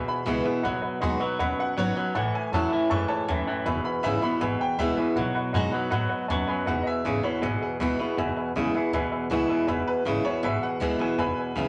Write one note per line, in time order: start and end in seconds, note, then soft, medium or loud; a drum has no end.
0.00 0.23 E2 medium
0.00 0.23 B2 loud
0.00 0.61 B2 medium
0.07 0.19 B4 medium
0.07 0.19 E5 medium
0.07 0.19 G#5 medium
0.07 1.18 B5 loud
0.07 muted upright bass stroke medium
0.26 0.44 C#2 medium
0.26 0.43 E2 medium
0.26 0.44 B2 medium
0.26 0.44 E3 loud
0.26 0.45 G#3 loud
0.26 0.45 B3 loud
0.26 0.44 E4 loud
0.26 0.38 B4 medium
0.26 0.38 E5 medium
0.26 0.38 G#5 medium
0.44 0.62 E2 medium
0.44 0.63 B2 medium
0.44 0.65 B3 medium
0.44 0.64 E4 medium
0.44 0.56 B4 medium
0.44 0.56 E5 medium
0.44 0.56 G#5 medium
0.44 muted upright bass stroke medium
0.63 0.82 B1 medium
0.63 0.98 B2 medium
0.63 1.36 B2 loud
0.63 0.99 F#3 medium
0.63 0.75 B4 loud
0.63 0.75 D#5 loud
0.63 0.75 F#5 loud
0.82 0.94 B4 medium
0.82 0.94 D#5 medium
0.82 0.94 F#5 loud
0.82 muted upright bass stroke medium
1.01 1.19 D#2 loud
1.01 1.19 B2 medium
1.01 1.20 F#3 medium
1.01 1.19 G#3 loud
1.01 1.21 B3 medium
1.01 1.21 D#4 loud
1.01 1.19 F#4 medium
1.01 1.13 B4 medium
1.01 1.13 D#5 medium
1.01 1.13 F#5 loud
1.20 1.38 B2 medium
1.20 1.38 F#3 medium
1.20 1.40 D#4 soft
1.20 1.39 F#4 medium
1.20 1.32 B4 loud
1.20 1.32 D#5 medium
1.20 1.32 F#5 medium
1.39 1.57 D#2 loud
1.39 2.12 F#2 loud
1.39 1.74 B2 medium
1.39 1.74 F#3 medium
1.39 1.51 B4 loud
1.39 1.51 D#5 medium
1.39 1.51 F#5 loud
1.58 1.70 B4 medium
1.58 1.70 D#5 medium
1.58 1.70 F#5 medium
1.58 1.78 F#5 loud
1.58 muted upright bass stroke medium
1.77 1.95 G#1 medium
1.77 1.94 B2 medium
1.77 1.96 F#3 loud
1.77 1.95 F#3 loud
1.77 1.96 B3 loud
1.77 1.96 D#4 loud
1.77 1.95 F#4 loud
1.77 1.89 B4 medium
1.77 2.14 C#5 loud
1.77 1.89 D#5 medium
1.77 1.89 F#5 medium
1.96 2.13 B2 medium
1.96 2.14 F#3 medium
1.96 2.16 D#4 medium
1.96 2.15 F#4 medium
1.96 2.07 B4 medium
1.96 2.08 D#5 medium
1.96 2.08 F#5 medium
2.15 2.32 A1 medium
2.15 2.87 A2 medium
2.15 2.50 A2 medium
2.15 2.50 E3 medium
2.15 2.26 C#5 loud
2.15 2.26 E5 medium
2.15 2.34 F#5 loud
2.15 2.26 A5 loud
2.33 2.45 C#5 medium
2.33 2.45 E5 medium
2.33 2.45 G#5 medium
2.33 2.53 G#5 medium
2.33 muted upright bass stroke medium
2.52 2.70 E2 loud
2.52 2.70 A2 medium
2.52 2.89 E3 medium
2.52 2.71 F#3 loud
2.52 2.89 A3 loud
2.52 2.90 C#4 loud
2.52 2.90 E4 medium
2.52 2.64 C#5 medium
2.52 2.64 E5 medium
2.52 2.64 A5 medium
2.52 2.90 A5 medium
2.72 2.89 A2 medium
2.72 2.89 E3 medium
2.72 2.83 C#5 medium
2.72 2.83 E5 medium
2.72 2.83 A5 medium
2.90 3.08 F#2 medium
2.90 3.25 A2 medium
2.90 3.25 E3 medium
2.90 3.26 G#3 medium
2.90 3.02 C#5 loud
2.90 3.02 E5 medium
2.90 3.02 A5 loud
2.90 3.09 C#6 loud
3.08 3.44 C#5 medium
3.08 3.20 C#5 medium
3.08 3.20 E5 medium
3.08 3.46 A5 loud
3.08 3.21 A5 medium
3.08 muted upright bass stroke medium
3.28 3.46 D#2 medium
3.28 3.64 F#2 loud
3.28 3.45 A2 medium
3.28 3.46 E3 loud
3.28 3.40 C#5 medium
3.28 3.40 E5 medium
3.28 3.40 A5 medium
3.47 3.64 A2 medium
3.47 3.64 E3 medium
3.47 3.58 C#5 medium
3.47 3.59 E5 medium
3.47 3.59 A5 medium
3.47 muted upright bass stroke medium
3.66 3.83 E1 loud
3.66 4.00 E2 medium
3.66 4.38 E2 medium
3.66 4.00 B2 medium
3.66 3.77 B4 loud
3.66 3.77 E5 loud
3.66 3.77 G#5 loud
3.84 3.96 B4 medium
3.84 3.96 E5 medium
3.84 3.96 G#5 medium
3.84 4.03 B5 loud
4.03 4.21 G#1 loud
4.03 4.21 E2 medium
4.03 4.21 C#3 medium
4.03 4.21 E3 medium
4.03 4.22 G#3 loud
4.03 4.22 B3 medium
4.03 4.21 E4 loud
4.03 4.14 B4 medium
4.03 4.14 E5 medium
4.03 4.22 E5 loud
4.03 4.15 G#5 loud
4.22 4.39 E2 medium
4.22 4.39 B2 medium
4.22 4.42 B3 medium
4.22 4.40 E4 medium
4.22 4.34 B4 medium
4.22 4.34 E5 medium
4.22 4.34 B5 medium
4.22 4.59 B5 loud
4.22 muted upright bass stroke medium
4.41 4.58 G#1 loud
4.41 4.75 E2 medium
4.41 5.13 B2 medium
4.41 4.75 B2 loud
4.41 4.52 B4 loud
4.41 4.52 E5 loud
4.41 4.52 G#5 loud
4.59 4.71 B4 medium
4.59 4.71 E5 medium
4.59 4.79 G5 loud
4.59 4.71 G#5 medium
4.78 4.96 D2 medium
4.78 4.96 E2 medium
4.78 4.96 B2 loud
4.78 4.97 E3 loud
4.78 4.97 G#3 loud
4.78 4.98 B3 medium
4.78 4.96 E4 loud
4.78 4.90 B4 medium
4.78 4.90 E5 medium
4.78 5.15 E5 loud
4.78 4.90 G#5 medium
4.97 5.15 E2 medium
4.97 5.15 B2 medium
4.97 5.17 B3 medium
4.97 5.16 E4 medium
4.97 5.09 B4 medium
4.97 5.09 E5 medium
4.97 5.09 G#5 loud
4.97 muted upright bass stroke medium
5.15 5.33 B1 loud
5.15 5.88 B2 medium
5.15 5.51 B2 medium
5.15 5.51 F#3 loud
5.15 5.27 B4 medium
5.15 5.28 D#5 medium
5.15 5.28 F#5 loud
5.35 5.46 B4 loud
5.35 5.46 D#5 medium
5.35 5.46 F#5 loud
5.35 muted upright bass stroke medium
5.53 5.71 F#2 loud
5.53 5.71 B2 medium
5.53 5.72 F#3 medium
5.53 5.71 G#3 loud
5.53 5.73 B3 medium
5.53 5.73 D#4 loud
5.53 5.71 F#4 loud
5.53 5.65 B4 medium
5.53 5.65 D#5 medium
5.53 5.65 F#5 loud
5.72 5.90 B2 medium
5.72 5.91 F#3 medium
5.72 5.92 D#4 medium
5.72 5.91 F#4 medium
5.72 5.84 B4 loud
5.72 5.84 D#5 medium
5.72 5.84 F#5 loud
5.72 muted upright bass stroke medium
5.91 6.09 A2 loud
5.91 6.26 B2 medium
5.91 6.26 F#3 medium
5.91 6.02 B4 loud
5.91 6.03 D#5 loud
5.91 6.03 F#5 loud
6.09 6.21 B4 loud
6.09 6.21 D#5 medium
6.09 6.21 F#5 loud
6.09 muted upright bass stroke medium
6.28 6.46 D#2 medium
6.28 6.65 F#2 loud
6.28 6.47 B2 medium
6.28 6.47 F#3 loud
6.28 6.40 B4 loud
6.28 6.40 D#5 medium
6.28 6.40 G#5 loud
6.28 6.46 A5 medium
6.48 6.66 B2 medium
6.48 6.66 F#3 medium
6.48 6.59 B4 loud
6.48 6.59 D#5 medium
6.48 6.59 G#5 loud
6.48 6.66 B5 medium
6.48 muted upright bass stroke medium
6.66 6.84 E1 medium
6.66 7.01 E2 medium
6.66 7.39 E2 medium
6.66 7.01 B2 medium
6.66 6.78 B4 loud
6.66 6.78 E5 medium
6.66 6.85 F#5 loud
6.66 6.78 G#5 loud
6.82 6.97 B4 medium
6.82 6.85 D#5 medium
6.82 6.97 E5 medium
6.82 6.97 G#5 medium
6.87 7.23 E5 medium
7.04 7.22 G#1 loud
7.04 7.22 E2 medium
7.04 7.22 C#3 medium
7.04 7.23 E3 medium
7.04 7.23 G#3 medium
7.04 7.24 B3 medium
7.04 7.22 E4 medium
7.04 7.16 B4 medium
7.04 7.16 E5 medium
7.04 7.16 G#5 medium
7.23 7.40 E2 medium
7.23 7.40 B2 medium
7.23 7.43 B3 medium
7.23 7.41 E4 medium
7.23 7.35 B4 medium
7.23 7.42 C#5 medium
7.23 7.35 E5 medium
7.23 7.35 B5 medium
7.23 muted upright bass stroke medium
7.42 7.59 G#1 loud
7.42 7.76 E2 medium
7.42 7.76 B2 loud
7.42 8.14 B2 medium
7.42 7.60 G#4 medium
7.42 7.54 B4 medium
7.42 7.54 E5 loud
7.42 7.54 G#5 loud
7.61 8.71 G#4 medium
7.61 7.72 B4 medium
7.61 7.73 E5 medium
7.61 7.73 G#5 medium
7.61 muted upright bass stroke medium
7.80 7.97 D2 medium
7.80 7.97 E2 medium
7.80 7.97 B2 medium
7.80 7.98 E3 medium
7.80 7.99 G#3 loud
7.80 7.99 B3 medium
7.80 7.98 E4 loud
7.80 7.91 B4 medium
7.80 7.91 E5 medium
7.80 7.92 G#5 medium
7.99 8.16 E2 medium
7.99 8.16 B2 medium
7.99 8.18 B3 medium
7.99 8.17 E4 medium
7.99 8.11 B4 medium
7.99 8.11 E5 medium
7.99 8.11 F#5 medium
7.99 muted upright bass stroke medium
8.17 8.35 E1 loud
8.17 8.51 E2 medium
8.17 8.90 E2 loud
8.17 8.52 B2 medium
8.17 8.29 B4 loud
8.17 8.29 E5 loud
8.17 8.29 G#5 loud
8.36 8.48 B4 loud
8.36 8.48 E5 medium
8.36 8.48 G#5 loud
8.36 muted upright bass stroke medium
8.55 8.72 B1 medium
8.55 8.73 E2 medium
8.55 8.73 C#3 loud
8.55 8.73 E3 medium
8.55 8.74 G#3 medium
8.55 8.74 B3 medium
8.55 8.73 E4 loud
8.55 8.67 B4 medium
8.55 8.67 E5 medium
8.55 8.67 G#5 loud
8.74 8.91 E2 medium
8.74 8.92 B2 medium
8.74 8.94 B3 soft
8.74 8.92 E4 medium
8.74 8.86 B4 medium
8.74 8.86 E5 medium
8.74 8.86 G#5 loud
8.74 muted upright bass stroke medium
8.92 9.10 D2 medium
8.92 9.27 E2 medium
8.92 9.65 B2 medium
8.92 9.27 B2 medium
8.92 9.05 B4 loud
8.92 9.05 E5 loud
8.92 9.05 G#5 loud
9.12 9.23 B4 loud
9.12 9.23 E5 medium
9.12 9.23 G#5 loud
9.30 9.47 C#2 medium
9.30 9.48 E2 medium
9.30 9.48 B2 loud
9.30 9.66 E3 medium
9.30 9.66 G#3 loud
9.30 9.67 B3 loud
9.30 9.67 E4 loud
9.30 9.42 B4 medium
9.30 9.42 E5 medium
9.30 9.42 G#5 loud
9.48 9.66 E2 medium
9.48 9.67 B2 loud
9.48 9.60 B4 medium
9.48 9.60 E5 medium
9.48 9.60 G#5 loud
9.67 9.85 E1 medium
9.67 10.02 E2 medium
9.67 10.40 E2 medium
9.67 10.02 B2 medium
9.67 9.79 B4 loud
9.67 9.79 E5 loud
9.67 9.79 G#5 loud
9.87 9.98 B4 medium
9.87 10.24 B4 loud
9.87 9.98 E5 medium
9.87 9.99 G#5 medium
10.05 10.23 G#1 medium
10.05 10.23 E2 medium
10.05 10.23 C#3 loud
10.05 10.24 E3 medium
10.05 10.24 G#3 loud
10.05 10.24 B3 medium
10.05 10.22 E4 loud
10.05 10.17 B4 medium
10.05 10.17 E5 medium
10.05 10.17 G#5 medium
10.23 10.41 E2 medium
10.23 10.42 B2 medium
10.23 10.43 B3 medium
10.23 10.42 E4 medium
10.23 10.36 B4 medium
10.23 10.43 C#5 loud
10.23 10.36 E5 medium
10.23 10.37 G#5 medium
10.23 muted upright bass stroke medium
10.43 10.60 G#1 loud
10.43 10.77 E2 medium
10.43 11.15 B2 medium
10.43 10.77 B2 medium
10.43 10.55 B4 loud
10.43 10.55 E5 medium
10.43 10.62 E5 medium
10.43 10.55 G#5 loud
10.62 10.73 B4 medium
10.62 10.73 E5 medium
10.62 10.99 F#5 medium
10.62 10.74 G#5 medium
10.80 10.98 D2 medium
10.80 10.98 E2 medium
10.80 10.98 B2 medium
10.80 10.99 E3 medium
10.80 10.99 G#3 loud
10.80 10.99 B3 loud
10.80 10.98 E4 loud
10.80 10.92 B4 medium
10.80 10.93 E5 medium
10.80 10.93 G#5 medium
10.99 11.16 E2 medium
10.99 11.17 B2 medium
10.99 11.19 B3 medium
10.99 11.18 E4 medium
10.99 11.12 B4 medium
10.99 11.12 E5 medium
10.99 11.12 G#5 medium
10.99 11.17 G#5 medium
11.17 11.35 E1 loud
11.17 11.52 E2 medium
11.17 11.68 E2 medium
11.17 11.53 B2 medium
11.17 11.30 B4 loud
11.17 11.30 E5 medium
11.17 11.54 G#5 medium
11.17 11.30 G#5 loud
11.17 11.55 B5 loud
11.38 11.49 B4 medium
11.38 11.49 E5 medium
11.38 11.49 G#5 medium
11.55 11.68 B1 loud
11.55 11.68 E2 medium
11.55 11.68 C#3 loud
11.55 11.68 E3 medium
11.55 11.68 G#3 medium
11.55 11.68 B3 loud
11.55 11.68 E4 loud
11.55 11.68 B4 medium
11.55 11.68 E5 medium
11.55 11.68 F#5 medium